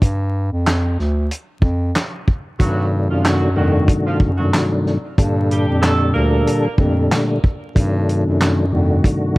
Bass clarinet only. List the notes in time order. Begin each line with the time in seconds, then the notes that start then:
0.02 G2
0.52 F2
0.99 D2
1.62 F2
2.60 G2
3.10 F#2
3.57 F2
4.20 F#2
5.18 G2
5.68 F2
6.15 D2
6.78 F2
7.76 G2
8.26 F#2
8.73 F2